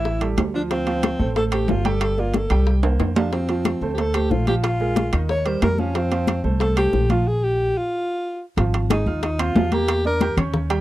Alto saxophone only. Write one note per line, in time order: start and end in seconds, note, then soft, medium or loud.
0.00 0.34 E4 medium
0.55 0.62 D4 medium
0.71 1.32 C4 medium
1.37 1.44 A4 medium
1.54 1.72 G4 medium
1.71 1.89 F4 medium
1.87 2.03 A4 medium
2.04 2.22 A4 medium
2.20 2.38 F4 medium
2.37 2.74 A4 medium
3.17 3.32 D4 medium
3.33 3.90 C4 medium
3.94 4.01 G4 medium
3.99 4.16 A4 medium
4.15 4.33 G4 medium
4.31 4.47 F4 medium
4.48 4.55 G4 medium
4.64 5.26 F4 medium
5.30 5.48 C#5 medium
5.46 5.62 C5 medium
5.63 5.81 A#4 medium
5.79 5.98 C#4 medium
5.96 6.45 C4 medium
6.61 6.76 A4 medium
6.78 7.08 G4 medium
7.12 7.29 F4 medium
7.28 7.45 G#4 medium
7.44 7.79 G4 medium
7.78 8.42 F4 medium
8.92 9.21 D#4 medium
9.24 9.42 D#4 medium
9.41 9.75 F4 medium
9.73 10.05 G4 loud
10.07 10.36 A#4 loud